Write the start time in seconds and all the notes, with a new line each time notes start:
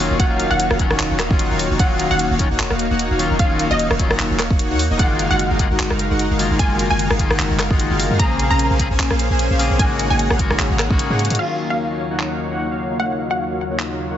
0.00 D#3 F#3 C#4 F4
0.10 D#1 A#3 D#4 F#4 C#5 F5
0.17 D#1 D#3 F#3 A#3 C#4 D#4 F#4 C#5 F5 F#5, kick, closed hi-hat
0.21 F4
0.40 closed hi-hat
0.51 D#1 A#3 D#4 F#4 C#5 F5 F#5
0.60 closed hi-hat
0.71 D#1 A#3 D#4 F#4 C#5 F5, cross-stick
0.78 D#3 F#3 C#4 F4, kick, closed hi-hat
0.91 D#1 A#3 D#4 F#4 C#5 F#5, cross-stick
0.99 D#1 A#3 D#4 F#4 C#5 F#5, clap, closed hi-hat
1.11 D#1 A#3 D#4 F#4 C#5 F5
1.19 cross-stick, clap, closed hi-hat
1.29 D#1 D#3 F#3 A#3 C#4 D#4 F4 F#4 C#5 F#5, kick
1.39 closed hi-hat
1.50 D#1 A#3 D#4 F#4 C#5 F5
1.59 open hi-hat
1.71 D#1 A#3 D#4 F#4 C#5 F5
1.77 D#1 D#3 F#3 A#3 C#4 D#4 F4 F#4 C#5 F5 F#5, kick, closed hi-hat
2.00 closed hi-hat
2.11 D#1 A#3 D#4 F#4 C#5 F5 F#5
2.19 closed hi-hat
2.31 D#1 A#3 D#4 F#4 C#5 F5
2.38 D#3 F#3 C#4 F4, kick, closed hi-hat
2.51 D#1 A#3 D#4 F#4 C#5 F#5
2.59 D#1 A#3 D#4 F#4 C#5 F#5, clap, closed hi-hat
2.70 D#1 A#3 D#4 F#4 C#5 F5, cross-stick
2.79 closed hi-hat
2.90 D#1 A#3 D#4 F#4 C#5 F#5
2.99 closed hi-hat
3.11 D#1 A#3 D#4 F#4 C#5 F5
3.18 D#3 F#3 C#4 F4, open hi-hat
3.30 D#1 A#3 D#4 F#4 C#5 F5
3.37 D#1 D#3 F#3 A#3 C#4 D#4 F4 F#4 C#5 F5, kick, closed hi-hat
3.59 closed hi-hat
3.71 D#1 A#3 D#4 F#4 C#5 D#5 F5
3.79 closed hi-hat
3.90 D#1 A#3 D#4 F#4 C#5 F5, cross-stick
3.98 D#3 F#3 C#4 F4, kick, closed hi-hat
4.11 D#1 A#3 D#4 F#4 C#5 F#5, cross-stick
4.19 D#1 A#3 D#4 F#4 C#5 F#5, clap, closed hi-hat
4.31 D#1 A#3 D#4 F#4 C#5 F5
4.39 cross-stick, clap, closed hi-hat
4.51 D#1 A#3 D#4 F#4 C#5 F#5, kick
4.59 closed hi-hat
4.70 D#2 A#3 D#4 F#4 C#5 F#5
4.79 open hi-hat
4.90 D#1 A#3 D#4 F#4 C#5 D#5
4.97 F#1 D#3 G#3 A#3 D#4 F4 F#4 A#4 F5 F#5, kick, closed hi-hat
5.19 closed hi-hat
5.30 F#1 G#3 D#4 F#4 A#4 F5 F#5
5.39 closed hi-hat
5.50 F#1 G#3 D#4 F#4 A#4 F5
5.58 D#3 G#3 A#3 F4, kick, closed hi-hat
5.70 F#1 G#3 D#4 F#4 A#4 F#5
5.79 F#1 G#3 D#4 F#4 A#4 F#5, clap, closed hi-hat
5.90 F#1 G#3 D#4 F#4 A#4 F5, cross-stick
5.99 closed hi-hat
6.10 F#1 G#3 D#4 F#4 A#4 F#5
6.19 closed hi-hat
6.30 F#1 G#3 D#4 F#4 A#4 F5
6.38 D#3 G#3 A#3 F4, open hi-hat
6.50 F#1 G#3 D#4 F#4 A#4 F5
6.57 F#1 D#3 G#3 A#3 D#4 F4 F#4 A#4 F5 G#5, kick, closed hi-hat
6.79 closed hi-hat
6.90 F#1 G#3 D#4 F#4 A#4 F5 G#5
6.99 closed hi-hat
7.10 F#1 G#3 D#4 F#4 A#4 F5, cross-stick
7.18 D#3 G#3 A#3 F4, kick, closed hi-hat
7.30 F#1 G#3 D#4 F#4 A#4 F#5, cross-stick
7.39 F#1 G#3 D#4 F#4 A#4 F#5, clap, closed hi-hat
7.50 F#1 G#3 D#4 F#4 A#4 F5
7.59 cross-stick, clap, closed hi-hat
7.69 F#1 D#3 G#3 A#3 D#4 F4 F#4 A#4 F#5, kick
7.80 closed hi-hat
7.90 F#1 G#3 D#4 F#4 A#4 F5
8.00 open hi-hat
8.10 F#2 G#3 D#4 F#4 A#4 F5
8.18 A#1 C#3 A#3 C4 C#4 G#4 C5 F5 A#5, kick, closed hi-hat
8.39 closed hi-hat
8.50 A#1 A#3 C#4 G#4 C5 F5 A#5
8.59 closed hi-hat
8.70 A#1 A#3 C#4 G#4 C5 F5
8.79 C#3 A#3 C4 G#4, kick, closed hi-hat
8.91 A#1 A#3 C#4 G#4 C5 G#5
8.99 A#1 A#3 C#4 G#4 C5 G#5, clap, closed hi-hat
9.11 A#1 A#3 C#4 G#4 C5 F5, cross-stick
9.19 closed hi-hat
9.30 A#1 A#3 C#4 G#4 C5 G#5
9.39 closed hi-hat
9.50 A#1 A#3 C#4 G#4 C5 F5
9.59 C#3 A#3 C4 G#4, open hi-hat
9.70 A#1 A#3 C#4 G#4 C5 F5
9.77 G#1 C#3 G#3 A#3 D#4 G#4 C#5 F#5 G#5, kick, closed hi-hat
9.81 F#4
9.99 closed hi-hat
10.10 G#1 A#3 D#4 G#4 C#5 F#5 G#5
10.19 closed hi-hat
10.30 G#1 A#3 D#4 G#4 C#5 F#5, cross-stick
10.38 C#3 G#3 A#3 F#4, kick, closed hi-hat
10.51 G#1 A#3 D#4 G#4 C#5 G#5, cross-stick
10.59 G#1 A#3 D#4 G#4 C#5 G#5, clap, closed hi-hat
10.70 G#1 A#3 D#4 G#4 C#5 F#5
10.79 cross-stick, clap, closed hi-hat
10.88 G#1 C#3 G#3 A#3 D#4 G#4 C#5 G#5, kick
10.92 F#4
10.99 closed hi-hat
11.10 G#2 A#3 D#4 G#4 C#5 F#5
11.19 closed hi-hat
11.25 closed hi-hat
11.30 G#2 A#3 D#4 G#4 C#5 F#5, closed hi-hat
11.35 D#3 F#3, closed hi-hat
11.39 D#2 C#3 F#3 A#3 C#4 D#4 F4 F#4 C#5 F5, crash
11.70 A#3 D#4 F#4 C#5 F5
11.90 A#3 D#4 F#4 C#5 F5
12.10 A#3 D#4 F#4 C#5 F#5
12.19 A#3 D#4 F#4 C#5 F#5, clap
12.30 A#3 D#4 F#4 C#5 F5
12.51 A#3 D#4 F#4 C#5 F#5
12.70 A#3 D#4 F#4 C#5 F5
12.91 A#3 D#4 F#4 C#5 F5
12.99 A#3 D#4 F#4 C#5 F5 F#5
13.30 A#3 D#4 F#4 C#5 F5 F#5
13.50 A#3 D#4 F#4 C#5 F5
13.70 A#3 D#4 F#4 C#5 F#5
13.79 A#3 D#4 F#4 C#5 F#5, clap
13.90 A#3 D#4 F#4 C#5 F5
14.10 A#3 D#4 F#4 C#5 F#5